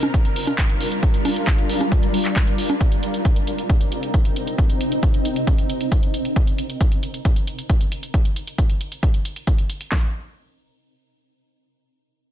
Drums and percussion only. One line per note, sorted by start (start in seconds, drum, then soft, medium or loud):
0.03 closed hi-hat soft
0.03 high conga medium
0.14 kick loud
0.14 closed hi-hat medium
0.25 closed hi-hat soft
0.36 open hi-hat loud
0.47 closed hi-hat soft
0.47 high conga medium
0.58 kick loud
0.58 clap loud
0.58 closed hi-hat medium
0.69 closed hi-hat soft
0.81 open hi-hat loud
0.92 closed hi-hat soft
1.03 kick loud
1.03 closed hi-hat medium
1.14 closed hi-hat soft
1.25 open hi-hat loud
1.25 high conga medium
1.36 closed hi-hat soft
1.47 kick loud
1.47 clap loud
1.47 closed hi-hat medium
1.58 closed hi-hat soft
1.70 open hi-hat loud
1.81 closed hi-hat soft
1.81 high conga medium
1.92 kick loud
1.92 closed hi-hat medium
2.03 closed hi-hat soft
2.14 open hi-hat loud
2.25 clap soft
2.25 closed hi-hat soft
2.36 kick loud
2.36 clap loud
2.36 closed hi-hat medium
2.47 closed hi-hat soft
2.58 open hi-hat loud
2.70 closed hi-hat soft
2.70 high conga medium
2.81 kick loud
2.81 closed hi-hat medium
2.92 closed hi-hat soft
3.03 closed hi-hat medium
3.14 closed hi-hat soft
3.25 kick loud
3.25 closed hi-hat medium
3.36 closed hi-hat soft
3.47 closed hi-hat medium
3.58 closed hi-hat soft
3.70 kick loud
3.70 closed hi-hat medium
3.81 closed hi-hat soft
3.92 closed hi-hat medium
4.03 closed hi-hat soft
4.14 kick loud
4.14 closed hi-hat medium
4.25 closed hi-hat soft
4.36 closed hi-hat medium
4.47 closed hi-hat soft
4.58 kick loud
4.58 closed hi-hat medium
4.70 closed hi-hat soft
4.81 closed hi-hat medium
4.92 closed hi-hat soft
5.03 kick loud
5.03 closed hi-hat medium
5.14 closed hi-hat soft
5.25 closed hi-hat medium
5.36 closed hi-hat soft
5.47 kick loud
5.47 closed hi-hat medium
5.58 closed hi-hat soft
5.70 closed hi-hat medium
5.81 closed hi-hat soft
5.92 kick loud
5.92 closed hi-hat medium
6.03 closed hi-hat soft
6.14 closed hi-hat medium
6.25 closed hi-hat soft
6.36 kick loud
6.36 closed hi-hat medium
6.47 closed hi-hat soft
6.58 closed hi-hat medium
6.70 closed hi-hat soft
6.81 kick loud
6.81 closed hi-hat medium
6.92 closed hi-hat soft
7.03 closed hi-hat medium
7.14 closed hi-hat soft
7.25 kick loud
7.25 closed hi-hat medium
7.36 closed hi-hat soft
7.47 closed hi-hat medium
7.58 closed hi-hat soft
7.70 kick loud
7.70 closed hi-hat medium
7.81 closed hi-hat soft
7.92 closed hi-hat medium
8.03 closed hi-hat soft
8.14 kick loud
8.14 closed hi-hat medium
8.25 closed hi-hat soft
8.36 closed hi-hat medium
8.47 closed hi-hat medium
8.58 kick loud
8.58 closed hi-hat medium
8.70 closed hi-hat medium
8.81 closed hi-hat medium
8.92 closed hi-hat soft
9.03 kick loud
9.03 closed hi-hat medium
9.14 closed hi-hat medium
9.25 closed hi-hat medium
9.36 closed hi-hat soft
9.47 kick loud
9.47 closed hi-hat medium
9.58 closed hi-hat soft
9.70 closed hi-hat medium
9.81 closed hi-hat soft
9.92 kick medium
9.92 snare medium
9.92 clap medium